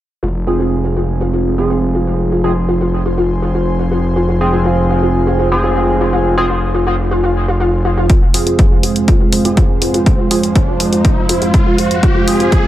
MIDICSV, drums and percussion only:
0, 0, Header, 1, 2, 480
1, 0, Start_track
1, 0, Key_signature, -4, "minor"
1, 0, Tempo, 491803
1, 222, Time_signature, 4, 2, 24, 8
1, 12370, End_track
2, 0, Start_track
2, 0, Title_t, "Drums"
2, 7902, Note_on_c, 9, 36, 111
2, 7902, Note_on_c, 9, 42, 56
2, 7999, Note_off_c, 9, 36, 0
2, 7999, Note_off_c, 9, 42, 0
2, 8142, Note_on_c, 9, 46, 97
2, 8239, Note_off_c, 9, 46, 0
2, 8264, Note_on_c, 9, 42, 54
2, 8361, Note_off_c, 9, 42, 0
2, 8382, Note_on_c, 9, 36, 110
2, 8382, Note_on_c, 9, 42, 53
2, 8382, Note_on_c, 9, 64, 84
2, 8479, Note_off_c, 9, 36, 0
2, 8479, Note_off_c, 9, 42, 0
2, 8479, Note_off_c, 9, 64, 0
2, 8621, Note_on_c, 9, 46, 89
2, 8719, Note_off_c, 9, 46, 0
2, 8743, Note_on_c, 9, 42, 56
2, 8841, Note_off_c, 9, 42, 0
2, 8861, Note_on_c, 9, 42, 55
2, 8862, Note_on_c, 9, 36, 114
2, 8959, Note_off_c, 9, 36, 0
2, 8959, Note_off_c, 9, 42, 0
2, 9101, Note_on_c, 9, 46, 98
2, 9101, Note_on_c, 9, 64, 85
2, 9199, Note_off_c, 9, 46, 0
2, 9199, Note_off_c, 9, 64, 0
2, 9224, Note_on_c, 9, 42, 58
2, 9321, Note_off_c, 9, 42, 0
2, 9341, Note_on_c, 9, 42, 56
2, 9342, Note_on_c, 9, 36, 113
2, 9439, Note_off_c, 9, 36, 0
2, 9439, Note_off_c, 9, 42, 0
2, 9582, Note_on_c, 9, 46, 88
2, 9679, Note_off_c, 9, 46, 0
2, 9704, Note_on_c, 9, 42, 51
2, 9801, Note_off_c, 9, 42, 0
2, 9821, Note_on_c, 9, 36, 121
2, 9822, Note_on_c, 9, 42, 54
2, 9822, Note_on_c, 9, 64, 86
2, 9919, Note_off_c, 9, 36, 0
2, 9919, Note_off_c, 9, 42, 0
2, 9919, Note_off_c, 9, 64, 0
2, 10061, Note_on_c, 9, 46, 106
2, 10159, Note_off_c, 9, 46, 0
2, 10184, Note_on_c, 9, 42, 57
2, 10282, Note_off_c, 9, 42, 0
2, 10301, Note_on_c, 9, 36, 116
2, 10302, Note_on_c, 9, 42, 52
2, 10399, Note_off_c, 9, 36, 0
2, 10399, Note_off_c, 9, 42, 0
2, 10541, Note_on_c, 9, 46, 92
2, 10541, Note_on_c, 9, 64, 84
2, 10639, Note_off_c, 9, 46, 0
2, 10639, Note_off_c, 9, 64, 0
2, 10663, Note_on_c, 9, 42, 56
2, 10761, Note_off_c, 9, 42, 0
2, 10781, Note_on_c, 9, 36, 122
2, 10782, Note_on_c, 9, 42, 57
2, 10879, Note_off_c, 9, 36, 0
2, 10879, Note_off_c, 9, 42, 0
2, 11022, Note_on_c, 9, 46, 104
2, 11119, Note_off_c, 9, 46, 0
2, 11144, Note_on_c, 9, 42, 56
2, 11241, Note_off_c, 9, 42, 0
2, 11261, Note_on_c, 9, 36, 118
2, 11262, Note_on_c, 9, 42, 54
2, 11262, Note_on_c, 9, 64, 83
2, 11359, Note_off_c, 9, 36, 0
2, 11359, Note_off_c, 9, 42, 0
2, 11359, Note_off_c, 9, 64, 0
2, 11501, Note_on_c, 9, 46, 90
2, 11599, Note_off_c, 9, 46, 0
2, 11623, Note_on_c, 9, 42, 52
2, 11721, Note_off_c, 9, 42, 0
2, 11741, Note_on_c, 9, 36, 122
2, 11741, Note_on_c, 9, 42, 54
2, 11839, Note_off_c, 9, 36, 0
2, 11839, Note_off_c, 9, 42, 0
2, 11981, Note_on_c, 9, 46, 106
2, 11981, Note_on_c, 9, 64, 85
2, 12079, Note_off_c, 9, 46, 0
2, 12079, Note_off_c, 9, 64, 0
2, 12104, Note_on_c, 9, 42, 52
2, 12201, Note_off_c, 9, 42, 0
2, 12221, Note_on_c, 9, 36, 113
2, 12221, Note_on_c, 9, 42, 52
2, 12319, Note_off_c, 9, 36, 0
2, 12319, Note_off_c, 9, 42, 0
2, 12370, End_track
0, 0, End_of_file